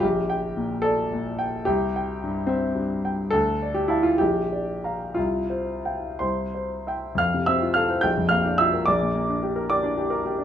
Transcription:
0.00 A#1 G4
0.30 G5
0.57 A#2
0.82 A4 D5
1.13 A#2
1.39 G5
1.65 C2 G4
1.96 G5
2.23 G2
2.47 C4 E5
2.75 G2
3.05 G5
3.30 D2 A4
3.63 D5
3.75 G4
3.88 E4 F5 A5
4.03 F4
4.18 A#1 G4
4.52 D5
4.84 F5 A#5
5.14 C2 F4
5.50 C5
5.85 F5 G5
6.19 C2 C5 C6
6.54 C5
6.87 E5 G5
7.15 F2 F5 F6
7.34 C3
7.46 C4 E5 E6
7.62 F4
7.74 A4 F5 F6
7.89 C5
8.01 A#1 G5 G6
8.17 F2
8.29 A#3 F5 F6
8.46 D4
8.58 F4 E5 E6
8.74 A#4
8.86 A#1 D5 D6
9.02 A#2
9.15 A#3
9.29 D4
9.43 G4
9.56 A#4
9.70 G4 D5 D6
9.83 D4
9.97 G4
10.10 A#4
10.26 G4
10.38 D4

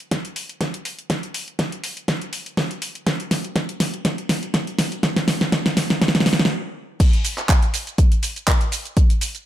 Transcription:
0.00 closed hi-hat
0.11 kick, snare, closed hi-hat
0.25 closed hi-hat
0.36 open hi-hat
0.49 closed hi-hat
0.61 kick, snare, closed hi-hat
0.74 closed hi-hat
0.85 open hi-hat
0.99 closed hi-hat
1.10 kick, snare, closed hi-hat
1.23 closed hi-hat
1.34 open hi-hat
1.48 closed hi-hat
1.59 kick, snare, closed hi-hat
1.72 closed hi-hat
1.84 open hi-hat
1.97 closed hi-hat
2.08 kick, snare, closed hi-hat
2.21 closed hi-hat
2.33 open hi-hat
2.46 closed hi-hat
2.57 kick, snare, open hi-hat
2.71 closed hi-hat
2.82 open hi-hat
2.95 closed hi-hat
3.06 kick, snare, closed hi-hat
3.20 closed hi-hat
3.31 snare, open hi-hat
3.44 closed hi-hat
3.56 kick, snare, closed hi-hat
3.69 closed hi-hat
3.80 snare, open hi-hat
3.94 closed hi-hat
4.05 kick, snare, closed hi-hat
4.18 closed hi-hat
4.29 snare, open hi-hat
4.43 closed hi-hat
4.54 kick, snare, closed hi-hat
4.67 closed hi-hat
4.79 snare, open hi-hat
4.92 closed hi-hat
5.03 kick, snare, closed hi-hat
5.16 snare, closed hi-hat
5.28 snare, open hi-hat
5.41 snare, closed hi-hat
5.52 kick, snare, closed hi-hat
5.66 snare, closed hi-hat
5.77 snare, open hi-hat
5.90 snare, closed hi-hat
6.02 kick, snare, closed hi-hat
6.08 snare
6.15 snare, closed hi-hat
6.20 snare
6.26 snare, open hi-hat
6.33 snare
6.39 snare, closed hi-hat
6.45 snare
7.00 kick, closed hi-hat, crash, shaker
7.13 closed hi-hat, shaker
7.25 open hi-hat, shaker
7.38 clap, closed hi-hat, shaker
7.49 kick, clap, closed hi-hat, shaker
7.62 closed hi-hat, shaker
7.74 open hi-hat, shaker
7.87 closed hi-hat, shaker
7.98 kick, closed hi-hat, shaker
8.12 closed hi-hat, shaker
8.23 open hi-hat, shaker
8.36 closed hi-hat, shaker
8.48 kick, clap, closed hi-hat, shaker
8.61 closed hi-hat, shaker
8.72 open hi-hat, shaker
8.85 closed hi-hat, shaker
8.97 kick, closed hi-hat, shaker
9.10 closed hi-hat, shaker
9.21 open hi-hat, shaker
9.35 closed hi-hat, shaker

